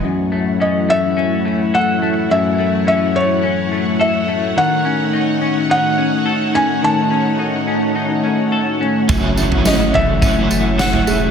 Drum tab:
TB |----------------|----------------|----------------|----------------|
SD |----------------|----------------|----------------|----------------|
FT |----------------|----------------|----------------|----------------|
BD |----------------|----------------|----------------|----------------|

TB |x-x-x---x-x-x-x-|
SD |----o-------o---|
FT |o--o--o-o----o--|
BD |o-------o-------|